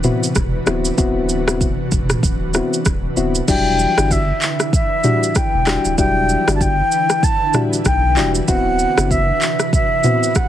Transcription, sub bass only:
0.00 0.11 D1 loud
0.36 0.59 E1 loud
0.67 0.91 D1 medium
0.98 1.75 D1 loud
1.92 2.16 E1 medium
2.23 2.61 D1 loud
2.86 3.10 D1 medium
3.17 3.41 D1 loud
3.48 3.86 E1 loud
3.98 4.31 G1 medium
5.54 5.78 E1 medium
5.85 5.95 D1 medium
5.98 6.36 E1 loud
6.47 6.81 G1 medium
7.86 8.18 B1 medium
8.17 8.41 E1 loud
8.48 8.86 D1 loud
8.98 9.31 F#1 medium

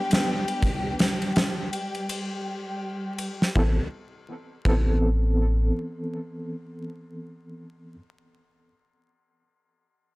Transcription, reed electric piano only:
0.00 0.99 G3 loud
0.00 1.00 B3 medium
0.00 1.00 D4 medium
0.00 1.01 B4 loud
3.55 3.78 E3 medium
3.55 3.79 B3 medium
3.55 3.80 C4 medium
3.55 3.80 A4 medium
4.65 7.94 E3 medium
4.65 7.95 B3 medium
4.65 7.95 C4 medium
4.65 7.96 A4 medium

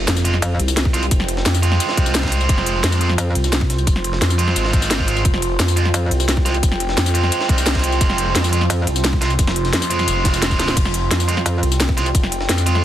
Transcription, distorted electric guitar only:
0.25 0.34 G#3 medium
0.25 0.34 C4 medium
0.25 0.34 F4 loud
0.94 1.03 G#3 medium
0.94 1.03 C4 medium
0.94 1.03 F4 medium
1.63 2.99 G#3 medium
1.63 2.99 C4 medium
1.63 2.99 F4 loud
3.01 3.10 G#3 medium
3.01 3.10 C4 medium
3.01 3.10 F4 medium
4.38 5.06 G#3 medium
4.38 5.06 C4 medium
4.38 5.06 F4 loud
5.07 5.22 G#3 medium
5.07 5.22 C4 medium
5.07 5.22 F4 medium
5.77 5.85 G#3 medium
5.77 5.85 C4 medium
5.77 5.85 F4 medium
6.45 6.54 G#3 medium
6.45 6.54 C4 medium
6.45 6.54 F4 medium
7.14 8.51 G#3 medium
7.14 8.51 C4 medium
7.14 8.51 F4 loud
8.52 8.61 G#3 medium
8.52 8.61 C4 medium
8.52 8.61 F4 loud
9.21 9.30 G#3 medium
9.21 9.30 C4 medium
9.21 9.30 F4 medium
9.90 10.58 G#3 medium
9.90 10.58 C4 medium
9.90 10.58 F4 loud
10.59 10.73 G#3 medium
10.59 10.73 C4 medium
10.59 10.73 F4 medium
11.28 11.37 G#3 medium
11.28 11.37 C4 medium
11.28 11.37 F4 loud
11.97 12.06 G#3 medium
11.97 12.06 C4 medium
11.97 12.06 F4 medium
12.66 12.84 G#3 medium
12.66 12.84 C4 medium
12.66 12.84 F4 loud

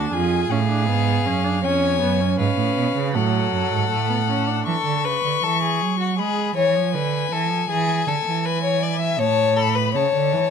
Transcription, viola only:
0.00 0.14 D4 medium
0.13 0.50 F4 medium
0.51 0.59 C#4 medium
0.69 0.88 D4 medium
0.88 1.28 B3 medium
1.26 1.46 C#4 medium
1.44 1.63 D4 medium
1.64 2.01 C#4 medium
2.01 2.22 B3 medium
2.20 3.14 C#4 medium
3.15 3.89 F#3 medium
3.91 4.09 A3 medium
4.10 4.17 B3 medium
4.29 4.49 C#4 medium
4.47 4.66 D4 soft

